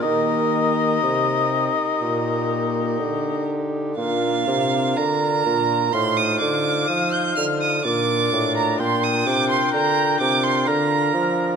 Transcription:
<<
  \new Staff \with { instrumentName = "Violin" } { \time 4/4 \key ees \major \tempo 4 = 62 bes'2.~ bes'8 r8 | \key bes \major f''4 bes''4 c'''16 ees'''16 d'''8 ees'''16 g'''16 f'''16 ees'''16 | d'''8. bes''16 c'''16 ees'''16 d'''16 c'''16 bes''8 d'''16 c'''16 bes''4 | }
  \new Staff \with { instrumentName = "Oboe" } { \time 4/4 \key ees \major ees''2.~ ees''8 r8 | \key bes \major r2 f''2 | d''4 g''2 f''4 | }
  \new Staff \with { instrumentName = "Pipe organ" } { \time 4/4 \key ees \major <bes ees' g'>1 | \key bes \major <d' f' bes'>2 <ees' f' c''>2 | <d' f' bes'>1 | }
  \new Staff \with { instrumentName = "Pipe organ" } { \clef bass \time 4/4 \key ees \major ees4 c8 r8 bes,4 d4 | \key bes \major bes,8 c8 d8 bes,8 a,8 d8 f8 d8 | bes,8 a,8 bes,8 c8 d8 c8 d8 f8 | }
  \new Staff \with { instrumentName = "Bassoon" } { \clef bass \time 4/4 \key ees \major ees4 c8 r8 bes,4 d4 | \key bes \major bes,8 c8 d8 bes,8 a,8 d8 f8 d8 | bes,8 a,8 bes,8 c8 d8 c8 d8 f8 | }
>>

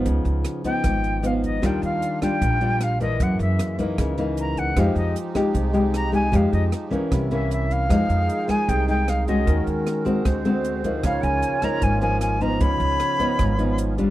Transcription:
<<
  \new Staff \with { instrumentName = "Flute" } { \time 4/4 \key f \minor \tempo 4 = 153 r4. g''4. f''8 ees''8 | g''8 f''4 g''4. f''8 ees''8 | ges''8 fes''4 r4. bes''8 ges''8 | f''8 ees''8 r2 bes''8 aes''8 |
f''8 ees''8 r4. e''8 e''8 f''8~ | f''4. aes''8 g''8 g''8 f''8 ees''8~ | ees''8 r2. r8 | f''8 aes''4 bes''8 aes''8 aes''8 aes''8 bes''8 |
ces'''2. r4 | }
  \new Staff \with { instrumentName = "Alto flute" } { \time 4/4 \key f \minor r1 | r1 | r1 | r1 |
r1 | aes'1 | bes'2 c''2 | des''2.~ des''8 r8 |
des''2.~ des''8 r8 | }
  \new Staff \with { instrumentName = "Accordion" } { \time 4/4 \key f \minor << { r1 | f'1 | r1 | g'1~ |
g'2 e'2 | g''1 | ges'2 fis'2 | f'1~ |
f'1 | } \\ { r1 | d'1 | bes1 | ees'1~ |
ees'2 r2 | ees'1 | des'2 c'2 | des'1 |
des'1 | } >> }
  \new Staff \with { instrumentName = "Accordion" } { \clef bass \time 4/4 \key f \minor << { r1 | g1 | aes1 | aes1~ |
aes2 bes2 | aes1~ | aes1 | bes1 |
ces'1 | } \\ { r1 | r1 | r1 | f1~ |
f2 r2 | ees1~ | ees2 d2 | r1 |
r1 | } >> }
  \new Staff \with { instrumentName = "Nylon-string guitar" } { \time 4/4 \key f \minor << { <f b ees'>4. <f ces' ees'>4. <f ces' ees'>4 | <g d' f'>4. <g d' f'>4 <g d' f'>4 <e bes>8~ | <e bes>4. <fes bes ees'>4 <fes bes ees'>4. | <aes ees' g'>4 r8 <aes ees' g'>4 <aes ees' g'>4 <aes ees' g'>8 |
<aes ees' g'>4 r8 <e bes des'>4 <e bes des'>4. | <aes ees'>4. <aes ees'>4 <aes ees'>4 <aes des' ges'>8~ | <aes des' ges'>4. <aes c' ges'>4 <gis c' fis'>4 <f bes ees'>8~ | <f bes ees'>4. <f bes ees'>4 <f bes ees'>4 <f b ees'>8~ |
<f b ees'>4. <f ces' ees'>4 <f ces' ees'>4 <g d' f'>8 | } \\ { des2 aes,2 | ees2 bes,2 | ges,2 des2 | f2 c2 |
f2 c2 | f2 c2 | ees2 d2 | des2 aes,2 |
des2 aes,2 | } >> }
  \new Staff \with { instrumentName = "Upright bass" } { \clef bass \time 4/4 \key f \minor des,8 des,8 r4 aes,,2 | ees,8 ees,8 r4 bes,,2 | ges,8 ges,8 r4 des,2 | f,8 f,8 r4 c,2 |
f,8 f,8 r4 c,2 | f,8 f,8 r4 c,2 | ees,8 ees,8 r4 d,2 | des,8 des,8 r4 aes,,2 |
des,8 des,8 r4 aes,,2 | }
  \new DrumStaff \with { instrumentName = "Drums" } \drummode { \time 4/4 <hh bd>8 hh8 <hh ss>8 <hh bd>8 <hh bd ss>8 hh8 hh8 <hh bd>8 | <hh bd ss>8 hh8 hh8 <hh bd ss>8 <hh bd>8 hh8 <hh ss>8 <hh bd>8 | <hh bd>8 hh8 <hh ss>8 <hh bd>8 <hh bd ss>8 hh8 hh8 <hh bd>8 | <hh bd ss>8 hh8 hh8 <hh bd ss>8 <hh bd>8 hh8 <hh ss>8 <hh bd>8 |
<hh bd>8 hh8 <hh ss>8 <hh bd>8 <hh bd ss>8 hh8 hh8 <hh bd>8 | <hh bd ss>8 hh8 hh8 <hh bd ss>8 <hh bd>8 hh8 <hh ss>8 <hh bd>8 | <hh bd>8 hh8 <hh ss>8 <hh bd>8 <hh bd ss>8 hh8 hh8 <hh bd>8 | <hh bd ss>8 hh8 hh8 <hh bd ss>8 <hh bd>8 hh8 <hh ss>8 <hh bd>8 |
<hh bd>8 hh8 <hh ss>8 <hh bd>8 <hh bd ss>8 hh8 hh8 <hh bd>8 | }
>>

